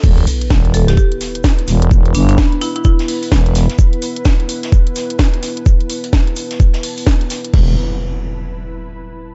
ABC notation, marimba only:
X:1
M:4/4
L:1/16
Q:"Swing 16ths" 1/4=128
K:C
V:1 name="Marimba"
z6 A G G z6 z | z2 D D z2 E E E z6 z | z16 | z16 |
z16 |]